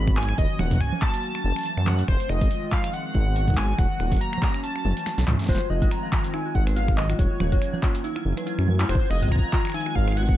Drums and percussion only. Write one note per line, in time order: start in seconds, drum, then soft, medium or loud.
0.07 finger snap medium
0.07 kick loud
0.17 clap loud
0.23 closed hi-hat medium
0.29 finger snap medium
0.38 kick loud
0.38 closed hi-hat medium
0.59 finger snap medium
0.59 low conga loud
0.71 kick loud
0.71 closed hi-hat medium
0.74 kick medium
0.76 kick medium
0.78 finger snap medium
0.78 kick medium
0.78 closed hi-hat soft
0.81 kick soft
0.84 kick soft
0.87 kick soft
0.90 kick soft
0.90 low conga medium
1.02 finger snap medium
1.02 kick loud
1.02 clap loud
1.14 closed hi-hat medium
1.23 closed hi-hat medium
1.35 finger snap medium
1.56 finger snap medium
1.56 closed hi-hat soft
1.59 closed hi-hat soft
1.61 closed hi-hat soft
1.63 closed hi-hat soft
1.66 closed hi-hat soft
1.77 finger snap medium
1.87 clap loud
1.87 low conga medium
1.90 low conga medium
1.93 low conga medium
1.96 closed hi-hat medium
1.96 low conga medium
2.08 finger snap medium
2.08 kick loud
2.20 closed hi-hat medium
2.29 finger snap medium
2.41 kick loud
2.41 closed hi-hat medium
2.51 closed hi-hat medium
2.72 kick loud
2.72 clap loud
2.84 finger snap medium
2.84 closed hi-hat medium
2.93 closed hi-hat soft
3.15 kick medium
3.36 closed hi-hat medium
3.48 kick loud
3.50 kick medium
3.54 finger snap medium
3.54 kick medium
3.54 clap loud
3.78 finger snap medium
3.78 kick loud
3.78 closed hi-hat medium
4.00 finger snap medium
4.12 kick loud
4.12 closed hi-hat medium
4.14 closed hi-hat medium
4.16 closed hi-hat soft
4.19 closed hi-hat soft
4.21 closed hi-hat medium
4.33 finger snap medium
4.38 low conga medium
4.42 kick loud
4.42 clap loud
4.54 finger snap medium
4.64 closed hi-hat medium
4.76 finger snap medium
4.85 high tom medium
4.97 closed hi-hat medium
5.06 finger snap medium
5.06 snare medium
5.06 closed hi-hat medium
5.18 snare medium
5.28 finger snap medium
5.28 clap loud
5.28 mid tom loud
5.28 low conga medium
5.39 snare soft
5.39 closed hi-hat medium
5.42 snare soft
5.44 snare medium
5.46 kick loud
5.46 snare medium
5.49 snare medium
5.49 closed hi-hat medium
5.52 snare medium
5.55 snare medium
5.58 snare medium
5.82 kick loud
5.82 closed hi-hat medium
5.91 finger snap medium
5.91 closed hi-hat medium
6.12 finger snap medium
6.12 kick loud
6.12 clap loud
6.24 closed hi-hat medium
6.34 finger snap medium
6.55 kick medium
6.67 finger snap medium
6.67 open hi-hat medium
6.76 closed hi-hat medium
6.88 finger snap medium
6.88 kick loud
6.98 clap loud
7.10 finger snap medium
7.10 closed hi-hat medium
7.19 kick loud
7.19 closed hi-hat medium
7.40 finger snap medium
7.40 low conga medium
7.52 kick loud
7.52 closed hi-hat medium
7.62 finger snap medium
7.62 closed hi-hat medium
7.74 low conga medium
7.83 finger snap medium
7.83 kick loud
7.83 clap loud
7.95 closed hi-hat medium
8.04 closed hi-hat medium
8.16 finger snap medium
8.37 finger snap medium
8.37 closed hi-hat medium
8.47 closed hi-hat medium
8.59 finger snap medium
8.68 low conga medium
8.80 clap loud
8.80 closed hi-hat medium
8.89 finger snap medium
8.89 closed hi-hat medium
8.95 kick loud
9.11 finger snap medium
9.22 kick medium
9.22 closed hi-hat medium
9.25 kick medium
9.29 kick medium
9.32 finger snap medium
9.32 kick medium
9.32 closed hi-hat medium
9.36 kick loud
9.39 kick loud
9.53 kick loud
9.53 clap loud
9.65 finger snap medium
9.65 closed hi-hat soft
9.67 finger snap medium
9.70 finger snap medium
9.70 closed hi-hat soft
9.72 finger snap soft
9.72 closed hi-hat medium
9.80 closed hi-hat medium
9.86 finger snap soft
9.96 kick medium
10.08 finger snap soft
10.08 open hi-hat medium
10.12 finger snap soft
10.17 finger snap soft
10.17 closed hi-hat medium
10.23 finger snap soft
10.29 kick loud